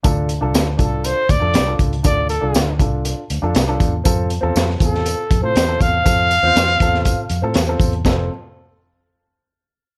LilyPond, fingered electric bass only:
\new Staff \with { instrumentName = "Fingered electric bass" } { \clef bass \time 4/4 \key f \major \tempo 4 = 120 d,8. c,16 d,8 c,8. r16 d,16 f,16 c,8 des,8 | d,8. c,16 d,8 c,8. r16 d,16 f,16 c,8 e,8 | f,8. e,16 f,8 e,8. r16 f,16 a,16 e,8 e,8 | f,8. e,16 f,8 e,8. r16 f,16 a,16 e,8 e,8 |
f,,8 r2. r8 | }